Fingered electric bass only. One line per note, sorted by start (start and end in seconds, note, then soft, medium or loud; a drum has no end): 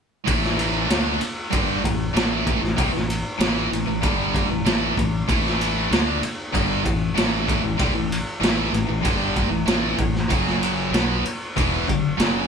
0.28 0.86 A1 medium
0.89 1.18 D2 medium
1.21 muted fingered electric bass stroke soft
1.53 1.82 G1 medium
1.84 2.13 A1 medium
2.16 2.59 A1 medium
2.63 2.77 A1 medium
2.79 2.92 C2 medium
2.94 3.22 A1 medium
3.40 3.69 A1 medium
3.72 3.86 A1 medium
3.88 4.02 A1 medium
4.04 4.46 G1 medium
4.50 4.64 A1 medium
4.65 4.94 A1 medium
4.97 5.26 A1 medium
5.29 5.87 A1 medium
5.91 6.20 D2 medium
6.54 6.82 G1 loud
6.86 7.14 A1 medium
7.17 7.60 A1 medium
7.64 7.78 A1 medium
7.80 7.94 C2 medium
7.94 8.23 A1 medium
8.41 8.70 A1 medium
8.73 8.87 A1 medium
8.88 9.03 A1 medium
9.05 9.48 G1 medium
9.51 9.65 A1 medium
9.67 9.96 A1 medium
9.99 10.27 A1 medium
10.30 10.89 F#1 medium
10.91 11.21 B1 medium
11.57 11.85 E1 medium
11.88 12.17 F#1 medium
12.20 12.47 F#1 medium